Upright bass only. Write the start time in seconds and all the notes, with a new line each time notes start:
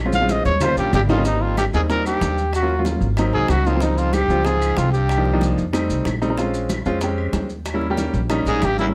Already playing: A#1
0.45 D#2
0.77 A#1
0.93 G#1
1.73 D#2
2.21 D#2
3.01 G#1
3.33 C2
3.49 C#2
4.28 C#2
4.78 C2
5.58 F2
5.90 C2
6.05 A#1
6.86 F2
7.33 D#2
8.14 A#1
8.46 A#1
8.62 G#1